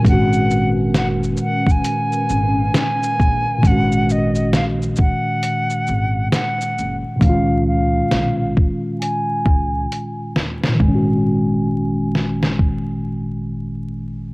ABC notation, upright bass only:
X:1
M:4/4
L:1/16
Q:"Swing 16ths" 1/4=67
K:G#dor
V:1 name="Upright bass" clef=bass
G,,,4 F,,,2 z4 G,,,2 z2 A,,, z | G,,,4 A,,,2 z4 G,,,2 z2 F,,, z | C,,4 B,,,2 z4 C,,2 z2 D,, z | G,,,16 |]